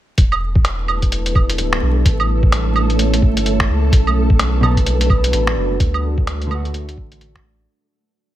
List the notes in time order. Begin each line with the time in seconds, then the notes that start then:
0.17 E1 G3 A3 D4 E4 A4 B4, kick, closed hi-hat
0.32 claves
0.55 kick
0.65 finger snap, closed hi-hat
0.88 claves
1.02 kick, closed hi-hat
1.12 closed hi-hat
1.26 closed hi-hat
1.35 kick, claves
1.49 closed hi-hat
1.58 D1, closed hi-hat
1.73 finger snap
1.82 B1
2.05 A1 A3 C#4 E4 C#5, kick, closed hi-hat
2.20 claves
2.43 kick
2.52 finger snap, closed hi-hat
2.76 claves
2.90 closed hi-hat
2.99 closed hi-hat
3.13 closed hi-hat
3.22 G1, kick
3.37 closed hi-hat
3.46 closed hi-hat
3.60 finger snap, kick
3.69 C#2
3.92 B1 G3 D4 F#4 B4, kick, closed hi-hat
4.07 claves
4.30 kick
4.39 finger snap, closed hi-hat
4.61 B2 F#3, claves
4.65 A4
4.77 kick, closed hi-hat
4.86 closed hi-hat
5.01 closed hi-hat
5.10 kick, claves
5.24 closed hi-hat
5.33 A1, closed hi-hat
5.47 finger snap
5.56 F#1
5.80 D2 A3 D5, kick, closed hi-hat
5.94 claves
6.18 kick
6.27 finger snap, closed hi-hat
6.42 closed hi-hat
6.47 D3 A3
6.51 F#4, claves
6.65 closed hi-hat
6.74 closed hi-hat
6.89 closed hi-hat
6.97 A1, kick
7.12 closed hi-hat
7.21 closed hi-hat
7.35 finger snap, kick